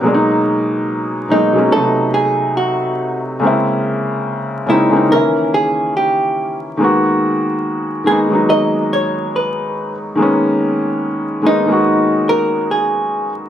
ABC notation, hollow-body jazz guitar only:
X:1
M:4/4
L:1/16
Q:"Swing 16ths" 1/4=71
K:G#m
V:1 name="Hollow-body jazz guitar"
z6 D2 =A2 G2 F3 z | z6 E2 A2 G2 =G3 z | z6 G2 d2 c2 B3 z | z6 D4 A2 G3 z |]